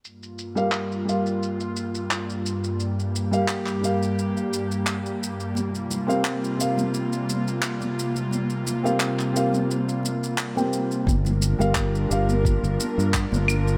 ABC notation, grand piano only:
X:1
M:4/4
L:1/16
Q:"Swing 16ths" 1/4=87
K:Gm
V:1 name="Grand piano"
z3 [G,GBf]3 [G,GBf]8- [G,GBf]2- | [G,GBf]3 [G,GBf]3 [G,GBf]8- [G,GBf]2 | z3 [CGBf]3 [CGBf]8- [CGBf]2- | [CGBf]3 [CGBf]3 [CGBf]6- [CGBf] [CGBg]3 |
z3 [G,GBf]3 [G,GBf]8- [G,GBf]2 |]